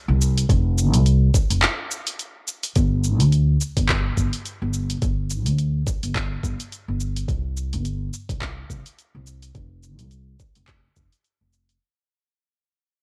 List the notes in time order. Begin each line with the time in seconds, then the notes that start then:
0.08 C2
0.22 cabasa
0.38 open hi-hat, cabasa
0.49 F1, kick, open hi-hat, cabasa
0.78 cabasa
0.94 C2, open hi-hat, cabasa
1.06 open hi-hat, cabasa
1.34 kick, cabasa
1.50 F1, open hi-hat, cabasa
1.62 clap, open hi-hat, cabasa
1.91 cabasa
2.07 open hi-hat, cabasa
2.19 open hi-hat, cabasa
2.48 cabasa
2.63 open hi-hat, cabasa
2.76 G1, kick, open hi-hat, cabasa
3.04 cabasa
3.20 D2, open hi-hat, cabasa
3.32 open hi-hat, cabasa
3.61 cabasa
3.77 G1, kick, open hi-hat, cabasa
3.89 kick, clap, open hi-hat, cabasa
4.17 G1, kick, cabasa
4.33 open hi-hat, cabasa
4.45 open hi-hat, cabasa
4.62 G1
4.74 cabasa
4.90 open hi-hat, cabasa
5.02 G1, kick, open hi-hat, cabasa
5.30 cabasa
5.46 D2, open hi-hat, cabasa
5.58 open hi-hat, cabasa
5.87 kick, cabasa
6.03 G1, open hi-hat, cabasa
6.15 kick, clap, open hi-hat, cabasa
6.43 G1, kick, cabasa
6.60 open hi-hat, cabasa
6.72 open hi-hat, cabasa
6.88 G1
7.00 cabasa
7.16 open hi-hat, cabasa
7.28 C2, kick, open hi-hat, cabasa
7.57 cabasa
7.73 G1, open hi-hat, cabasa
7.85 open hi-hat, cabasa
8.14 cabasa
8.29 C2, kick, open hi-hat, cabasa
8.42 kick, clap, open hi-hat, cabasa
8.70 C2, kick, cabasa
8.86 open hi-hat, cabasa
8.99 open hi-hat, cabasa
9.15 C2
9.27 cabasa
9.42 open hi-hat, cabasa
9.55 F1, kick, open hi-hat, cabasa
9.83 cabasa
9.99 C2, open hi-hat, cabasa
10.11 open hi-hat, cabasa
10.40 kick, cabasa
10.55 F1, open hi-hat, cabasa
10.68 kick, clap, open hi-hat, cabasa
10.96 F1, kick, cabasa
11.12 open hi-hat, cabasa
11.24 open hi-hat, cabasa
11.41 F1
11.53 cabasa
11.69 open hi-hat, cabasa